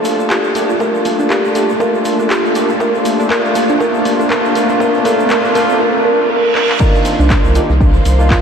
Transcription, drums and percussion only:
0.05 open hi-hat, shaker
0.20 shaker
0.30 kick, clap, shaker
0.44 shaker
0.55 open hi-hat, shaker
0.70 shaker
0.80 kick, shaker
0.95 shaker
1.05 open hi-hat, shaker
1.20 shaker
1.30 kick, clap, shaker
1.45 shaker
1.55 open hi-hat, shaker
1.70 shaker
1.80 kick, shaker
1.95 shaker
2.05 open hi-hat, shaker
2.20 shaker
2.30 kick, clap, shaker
2.45 shaker
2.55 open hi-hat, shaker
2.69 shaker
2.80 kick, shaker
2.95 shaker
3.05 open hi-hat, shaker
3.20 shaker
3.30 kick, clap, shaker
3.45 shaker
3.55 open hi-hat, shaker
3.69 shaker
3.80 kick, shaker
3.94 shaker
4.05 open hi-hat, shaker
4.21 shaker
4.30 kick, clap, shaker
4.45 shaker
4.55 open hi-hat, shaker
4.69 shaker
4.80 kick, shaker
4.94 shaker
5.05 open hi-hat, shaker
5.20 shaker
5.29 kick, clap, shaker
5.44 shaker
5.55 clap, open hi-hat, shaker
5.70 shaker
6.55 clap
6.69 clap
6.80 kick, ride, crash, shaker
6.95 ride, shaker
7.05 open hi-hat, ride, shaker
7.20 shaker
7.30 kick, snare, clap, ride, shaker
7.44 ride, shaker
7.55 open hi-hat, ride, shaker
7.70 snare, shaker
7.80 kick, ride, shaker
7.94 shaker
8.05 open hi-hat, ride, shaker
8.20 shaker
8.30 kick, snare, clap, ride, shaker

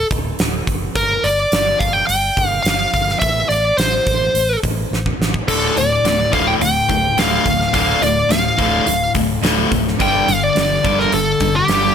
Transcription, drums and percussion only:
0.11 kick, open hi-hat
0.39 snare, open hi-hat
0.67 kick, open hi-hat
0.96 kick, open hi-hat
1.24 open hi-hat
1.52 snare, open hi-hat
1.81 kick, open hi-hat
2.09 open hi-hat
2.37 kick, open hi-hat
2.65 snare, open hi-hat
2.94 kick, open hi-hat
3.09 snare
3.21 kick, open hi-hat
3.50 open hi-hat
3.78 snare, open hi-hat
4.07 kick, open hi-hat
4.35 open hi-hat
4.63 kick, open hi-hat
4.93 snare
5.06 kick
5.22 snare
5.34 kick
5.48 kick, open hi-hat, splash
5.77 open hi-hat
6.05 snare, open hi-hat
6.33 kick, open hi-hat
6.61 open hi-hat
6.89 kick, open hi-hat
7.18 snare, open hi-hat
7.46 kick, open hi-hat
7.61 snare
7.74 kick, open hi-hat
8.02 open hi-hat
8.31 snare, open hi-hat
8.59 kick, open hi-hat
8.87 open hi-hat
9.15 kick, open hi-hat
9.43 snare, open hi-hat
9.72 kick, open hi-hat
9.88 snare
10.00 kick, open hi-hat
10.28 open hi-hat
10.56 snare, open hi-hat
10.85 kick, open hi-hat
11.00 snare
11.12 open hi-hat
11.40 kick, open hi-hat
11.68 snare, open hi-hat

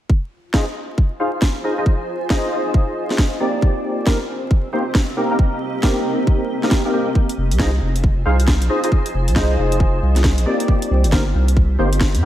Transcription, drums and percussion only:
0.10 kick
0.54 kick, snare
0.98 kick
1.42 kick, snare
1.86 kick
2.30 kick, snare
2.74 kick
3.10 snare
3.18 kick, snare
3.62 kick
4.07 kick, snare
4.51 kick
4.95 kick, snare
5.39 kick
5.83 kick, snare
6.27 kick
6.63 snare
6.71 kick, snare
7.15 kick
7.29 closed hi-hat
7.51 closed hi-hat
7.59 kick, snare
7.96 closed hi-hat
8.04 kick
8.40 closed hi-hat
8.48 kick, snare
8.62 closed hi-hat
8.84 closed hi-hat
8.92 kick
9.06 closed hi-hat
9.28 closed hi-hat
9.36 kick, snare
9.72 closed hi-hat
9.80 kick
10.16 snare, closed hi-hat
10.24 kick, snare
10.38 closed hi-hat
10.60 closed hi-hat
10.68 kick
10.82 closed hi-hat
11.04 closed hi-hat
11.12 kick, snare
11.48 closed hi-hat
11.57 kick
11.93 closed hi-hat
12.01 kick, snare
12.15 closed hi-hat

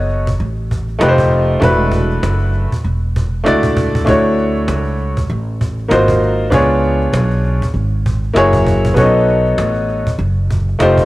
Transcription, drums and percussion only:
0.09 cajon slap
0.27 cajon bass
0.40 cajon slap
0.71 cajon bass
0.87 cajon slap
0.89 cajon slap
1.01 cajon slap
1.18 cajon bass
1.32 cajon slap
1.50 cajon slap
1.62 cajon bass
1.92 cajon bass
2.10 cajon slap
2.23 cajon slap
2.40 cajon slap
2.54 cajon slap
2.72 cajon bass
2.85 cajon slap
3.16 cajon bass
3.32 cajon slap
3.46 cajon slap
3.63 cajon bass
3.77 cajon bass
3.95 cajon bass
4.07 cajon bass
4.38 cajon slap
4.56 cajon slap
4.68 cajon slap
4.85 cajon slap
4.99 cajon slap
5.17 cajon bass
5.29 cajon slap
5.61 cajon bass
5.77 cajon slap
5.79 cajon slap
5.91 cajon slap
6.08 cajon bass
6.23 cajon slap
6.40 cajon slap
6.52 cajon bass
6.84 cajon slap
7.02 cajon slap
7.14 cajon slap
7.31 cajon slap
7.44 cajon slap
7.62 cajon bass
7.75 cajon slap
8.06 cajon bass
8.22 cajon slap
8.24 cajon slap
8.36 cajon slap
8.53 cajon bass
8.67 cajon bass
8.85 cajon bass
8.97 cajon bass
9.28 cajon slap
9.46 cajon slap
9.58 cajon slap
9.75 cajon slap
9.88 cajon slap
10.07 cajon bass
10.20 cajon slap
10.51 cajon bass
10.67 cajon slap
10.69 cajon slap
10.80 cajon slap
10.98 cajon bass

